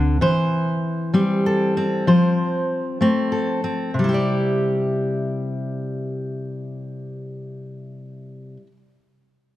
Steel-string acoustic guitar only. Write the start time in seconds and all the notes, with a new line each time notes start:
Already playing: D3 D5
0.21 E3 C5
1.14 G3 C4
1.46 A4
1.77 C4
2.07 F3 C5
3.01 A3 C4
3.32 A4
3.64 C4
3.94 C3
3.99 G3
4.04 E4
4.09 G4
4.14 D5